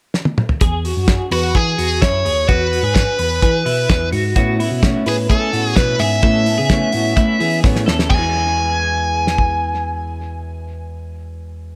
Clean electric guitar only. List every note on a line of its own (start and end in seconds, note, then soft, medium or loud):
0.61 0.85 G#4 medium
0.85 1.29 F#4 medium
1.32 1.55 B4 medium
1.55 1.78 G#4 medium
1.78 2.02 F#4 medium
2.02 2.25 E4 medium
2.25 2.49 G#4 medium
2.49 2.82 F#4 medium
2.84 3.17 G#4 medium
3.19 3.42 B4 medium
3.43 3.65 G#4 medium
3.66 4.10 E4 medium
4.12 4.35 F#4 medium
4.36 4.59 F#4 medium
4.60 5.04 E4 medium
5.07 5.29 B4 medium
5.29 5.53 G#4 medium
5.53 5.77 F#4 medium
5.77 6.00 E4 medium
6.00 6.22 G#4 medium
6.23 6.56 A4 medium
6.58 6.93 G#4 medium
6.93 7.16 F#4 medium
7.16 7.40 E4 medium
7.40 7.84 G#4 medium
7.86 8.10 A4 medium
8.11 9.46 G#4 medium